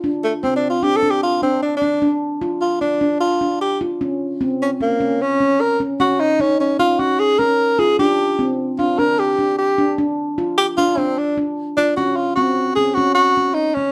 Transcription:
0.04 0.30 D4 medium
0.24 0.33 A3 medium
0.43 0.56 C4 medium
0.43 0.70 C4 medium
0.56 0.69 D4 medium
0.70 0.85 F4 medium
0.83 0.96 D4 medium
0.83 0.98 G4 medium
0.97 1.12 A4 medium
1.03 1.29 D4 medium
1.11 1.23 G4 medium
1.23 1.41 F4 medium
1.42 1.61 C4 medium
1.42 1.69 D4 medium
1.63 1.75 D4 medium
1.77 2.13 D4 medium
1.82 1.95 D4 medium
2.02 2.28 D4 medium
2.41 2.68 F4 medium
2.61 2.80 F4 medium
2.81 3.18 D4 medium
2.81 2.95 D4 medium
3.01 3.28 D4 medium
3.20 3.58 F4 medium
3.41 3.68 D4 medium
3.61 3.80 G4 medium
3.81 3.94 F4 medium
4.01 4.27 C#4 medium
4.41 4.67 C4 medium
4.62 4.71 C#4 medium
4.81 5.23 A#3 medium
4.81 4.94 C#4 medium
5.00 5.27 C#4 medium
5.22 5.62 C#4 medium
5.41 5.67 C#4 medium
5.61 5.80 A#4 medium
5.80 5.93 C#4 medium
6.00 6.26 C#4 medium
6.00 6.22 F#4 medium
6.20 6.42 D#4 medium
6.40 6.60 C#4 medium
6.40 6.66 D#4 medium
6.60 6.79 C#4 medium
6.79 6.93 C#4 medium
6.79 7.01 F4 medium
6.99 7.26 C#4 medium
6.99 7.21 F#4 medium
7.19 7.40 G#4 medium
7.39 7.66 C#4 medium
7.39 7.81 A#4 loud
7.79 7.92 F4 medium
7.79 7.99 G#4 loud
7.99 8.26 D4 medium
7.99 8.55 G4 medium
8.39 8.65 C4 medium
8.78 8.92 D4 medium
8.78 9.00 F4 medium
8.99 9.25 D4 medium
8.99 9.21 A#4 medium
9.19 9.58 G4 medium
9.39 9.65 D4 medium
9.59 9.96 G4 medium
9.78 9.92 D4 medium
9.98 10.25 D4 medium
10.38 10.65 F4 medium
10.58 10.67 G4 medium
10.77 10.91 D4 medium
10.77 10.99 F4 loud
10.97 11.19 C4 medium
10.97 11.24 D4 medium
11.18 11.38 D4 medium
11.38 11.64 D4 medium
11.77 11.96 D4 loud
11.77 11.91 F4 medium
11.96 12.24 C#4 medium
11.96 12.17 F#4 medium
12.16 12.35 F4 medium
12.35 12.64 C4 medium
12.35 12.73 F#4 medium
12.75 12.91 C#4 medium
12.75 12.96 G#4 medium
12.94 13.24 C#4 medium
12.94 13.14 F#4 medium
13.15 13.56 F#4 loud
13.37 13.64 C#4 medium
13.54 13.76 D#4 medium
13.75 13.92 C#4 medium
13.75 13.90 C#4 medium

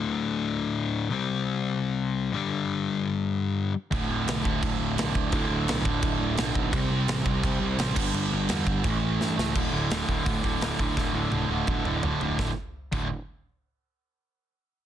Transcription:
0.00 1.09 D2 medium
0.00 1.10 A2 loud
0.00 1.11 D3 loud
1.10 2.32 C3 loud
1.10 2.33 G3 loud
1.10 2.34 C4 loud
2.33 3.72 G2 loud
2.33 3.73 D3 loud
2.33 3.74 G3 loud
3.91 4.07 D1 loud
3.91 4.47 D2 medium
3.91 4.44 A2 loud
3.91 4.43 D3 loud
3.91 kick loud
3.91 crash medium
4.09 4.24 D1 medium
4.27 4.42 B1 loud
4.27 snare loud
4.27 crash medium
4.44 4.60 D1 medium
4.44 4.95 D2 medium
4.44 4.96 A2 medium
4.44 4.96 D3 medium
4.44 kick loud
4.63 4.77 D1 medium
4.63 kick loud
4.63 crash medium
4.79 4.94 D1 medium
4.96 5.11 B1 medium
4.96 5.30 D2 medium
4.96 5.31 A2 medium
4.96 5.32 D3 loud
4.96 snare loud
4.96 crash medium
5.15 5.30 D1 loud
5.15 kick medium
5.31 5.47 D1 loud
5.31 5.83 D2 loud
5.31 5.84 A2 loud
5.31 5.83 D3 loud
5.31 kick loud
5.31 crash medium
5.49 5.64 D1 medium
5.68 5.82 B1 loud
5.68 snare loud
5.68 crash medium
5.84 6.00 D1 medium
5.84 6.35 D2 medium
5.84 6.37 A2 medium
5.84 6.36 D3 medium
5.84 kick loud
6.02 6.18 D1 loud
6.02 kick loud
6.02 crash medium
6.20 6.35 D1 medium
6.36 6.52 B1 medium
6.36 6.71 D2 medium
6.36 6.72 A2 medium
6.36 6.73 D3 loud
6.36 snare loud
6.36 crash medium
6.55 6.70 B1 medium
6.55 kick medium
6.71 6.88 C2 loud
6.71 7.24 C3 loud
6.71 7.25 G3 loud
6.71 7.23 C4 loud
6.71 kick loud
6.71 crash medium
6.90 7.05 C2 medium
7.08 7.23 A1 loud
7.08 snare loud
7.08 crash medium
7.24 7.40 C2 medium
7.24 7.75 C3 medium
7.24 7.77 G3 medium
7.24 7.76 C4 medium
7.24 kick medium
7.43 7.58 C2 loud
7.43 kick loud
7.43 crash medium
7.60 7.75 C2 medium
7.77 7.93 A1 medium
7.77 7.94 C3 medium
7.77 7.95 G3 medium
7.77 7.96 C4 loud
7.77 snare loud
7.77 crash medium
7.95 8.11 G1 medium
7.95 8.47 G2 medium
7.95 8.48 D3 loud
7.95 8.48 G3 loud
7.95 kick loud
7.95 crash loud
8.14 8.28 G1 loud
8.14 crash medium
8.32 8.47 G1 medium
8.48 8.64 E2 loud
8.48 8.82 G2 medium
8.48 8.83 D3 medium
8.48 8.84 G3 medium
8.48 snare loud
8.48 crash medium
8.66 8.81 G1 loud
8.66 kick loud
8.83 8.99 A1 medium
8.83 9.36 A2 loud
8.83 9.37 E3 loud
8.83 9.35 A3 loud
8.83 kick loud
8.83 crash medium
9.02 9.17 A1 medium
9.20 9.35 G2 medium
9.20 snare medium
9.37 9.53 C#2 medium
9.37 9.54 A2 medium
9.37 9.54 E3 medium
9.37 9.53 A3 loud
9.37 snare loud
9.55 9.67 D1 medium
9.55 9.72 D2 medium
9.55 9.72 A2 medium
9.55 9.73 D3 loud
9.55 kick loud
9.55 crash loud
9.73 9.84 D1 medium
9.73 9.90 D2 medium
9.73 9.90 A2 medium
9.73 9.91 D3 medium
9.90 10.02 D1 medium
9.90 10.08 D2 medium
9.90 10.08 A2 loud
9.90 10.09 D3 loud
9.90 snare loud
9.90 open hi-hat medium
10.08 10.20 D1 medium
10.08 10.25 D2 medium
10.08 10.25 A2 medium
10.08 10.27 D3 medium
10.08 kick medium
10.26 10.38 D1 medium
10.26 10.43 D2 medium
10.26 10.43 A2 medium
10.26 10.44 D3 medium
10.26 kick loud
10.26 open hi-hat medium
10.44 10.55 D1 medium
10.44 10.61 D2 loud
10.44 10.61 A2 medium
10.44 10.62 D3 loud
10.44 kick medium
10.61 10.73 D1 medium
10.61 10.79 D2 medium
10.61 10.79 A2 medium
10.61 10.80 D3 loud
10.61 snare loud
10.61 open hi-hat medium
10.79 10.91 D1 medium
10.79 10.95 D2 medium
10.79 10.96 A2 medium
10.79 10.97 D3 medium
10.79 kick medium
10.97 11.08 D1 loud
10.97 11.13 D2 medium
10.97 11.14 A2 medium
10.97 11.14 D3 loud
10.97 kick loud
10.97 snare medium
11.13 11.25 D1 medium
11.13 11.31 D2 medium
11.13 11.31 A2 medium
11.13 11.32 D3 medium
11.32 11.44 D1 medium
11.32 11.49 D2 medium
11.32 11.49 A2 medium
11.32 11.50 D3 loud
11.32 high tom medium
11.49 11.61 D1 medium
11.49 11.67 D2 medium
11.49 11.68 A2 medium
11.49 11.68 D3 medium
11.67 11.79 D1 medium
11.67 11.85 D2 medium
11.67 11.85 A2 medium
11.67 11.86 D3 medium
11.67 kick loud
11.67 mid tom medium
11.85 11.96 D1 medium
11.85 12.02 D2 medium
11.85 12.03 A2 loud
11.85 12.03 D3 medium
11.85 mid tom medium
12.03 12.15 D1 medium
12.03 12.20 D2 medium
12.03 12.21 A2 medium
12.03 12.21 D3 medium
12.03 floor tom medium
12.21 12.33 D1 medium
12.21 12.37 D2 medium
12.21 12.38 A2 medium
12.21 12.39 D3 medium
12.21 floor tom medium
12.39 12.49 D1 medium
12.39 12.49 D2 medium
12.39 12.50 A2 medium
12.39 12.50 D3 medium
12.39 kick medium
12.39 snare medium
12.92 13.09 D1 medium
12.92 13.07 D2 medium
12.92 13.07 A2 medium
12.92 13.07 D3 medium
12.92 kick loud
12.92 crash medium

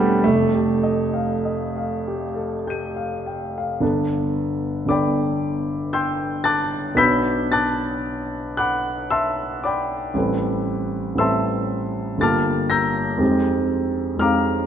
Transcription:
0.00 0.17 E1 medium
0.00 0.22 G3 medium
0.00 0.24 A3 medium
0.00 0.24 B3 medium
0.00 0.24 C4 medium
0.00 0.24 D4 loud
0.00 0.24 G4 soft
0.00 0.24 A4 soft
0.00 0.24 F#5 soft
0.00 0.24 G5 soft
0.24 3.79 F1 medium
0.24 3.25 A3 medium
0.54 1.02 G4 soft
0.83 1.32 D#5 soft
1.14 1.62 F5 soft
1.45 1.93 D#5 soft
1.76 2.23 F5 soft
2.08 2.54 G4 soft
2.35 2.64 A4 soft
2.67 3.13 G4 soft
2.67 3.79 G6 soft
2.67 3.81 D#7 soft
2.96 3.43 F5 soft
3.26 3.55 G5 soft
3.58 3.84 F5 soft
3.80 4.84 G1 soft
3.80 4.86 B3 soft
3.80 4.86 D4 soft
3.80 4.87 A4 soft
3.80 4.87 B4 soft
4.86 6.93 G1 soft
4.86 6.93 B3 soft
4.86 6.94 D4 soft
4.86 6.94 A4 soft
4.86 6.95 B4 soft
4.86 5.93 D6 medium
4.90 5.90 D5 soft
4.90 5.90 G5 soft
4.90 5.90 B5 soft
5.93 6.42 G5 medium
5.93 6.42 C6 medium
5.93 6.42 E6 medium
5.93 6.45 G6 medium
6.44 6.95 A5 medium
6.44 6.95 D6 medium
6.44 6.95 F#6 medium
6.44 6.98 A6 medium
6.95 10.09 B1 soft
6.95 10.09 B3 soft
6.95 10.09 D4 soft
6.95 10.10 F#4 soft
6.95 10.10 B4 soft
6.95 7.49 B5 medium
6.95 7.49 E6 medium
6.95 7.49 G6 medium
6.95 7.52 B6 medium
7.52 8.55 A5 medium
7.52 8.55 D6 medium
7.52 8.55 F#6 medium
7.52 8.59 A6 medium
8.57 9.08 F#5 medium
8.57 9.08 B5 medium
8.57 9.07 D6 medium
8.57 9.10 F#6 medium
9.11 9.60 E5 medium
9.11 9.60 A5 medium
9.11 9.60 C6 medium
9.11 9.63 E6 medium
9.64 10.12 D5 soft
9.64 10.13 G5 medium
9.64 10.12 B5 soft
9.64 10.15 D6 medium
10.14 11.13 A1 medium
10.14 11.14 G3 soft
10.14 11.15 C4 soft
10.14 11.16 A4 soft
10.14 11.16 B4 soft
11.15 12.15 A1 soft
11.15 12.16 G3 soft
11.15 12.16 C4 soft
11.15 12.17 A4 soft
11.15 12.17 B4 soft
11.15 12.20 E6 medium
11.20 12.17 E5 soft
11.20 12.17 A5 medium
11.20 12.17 C6 medium
12.18 13.16 G1 soft
12.18 13.17 G3 soft
12.18 13.18 A#3 soft
12.18 13.18 F4 soft
12.18 12.67 D6 medium
12.18 12.71 A6 medium
12.23 13.19 A4 soft
12.23 12.68 A5 medium
12.23 12.68 F6 medium
12.70 13.17 A#5 medium
12.70 13.17 E6 medium
12.70 13.17 G6 medium
12.70 13.20 A#6 medium
13.17 14.16 F2 soft
13.17 14.17 G#3 soft
13.17 14.17 C4 soft
13.17 14.18 D#4 soft
13.17 14.18 G4 soft
14.17 14.66 F2 soft
14.17 14.66 G#3 soft
14.17 14.66 C4 soft
14.17 14.66 D#4 soft
14.17 14.66 A#5 medium
14.17 14.66 F6 medium
14.21 14.66 G4 soft
14.21 14.66 F5 soft
14.21 14.66 D6 medium

